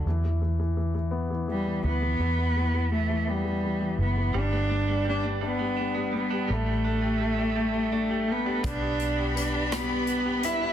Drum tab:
HH |------|------|------|------|
SD |------|------|------|------|
BD |------|------|------|------|

HH |xxxxxx|
SD |---r--|
BD |o-----|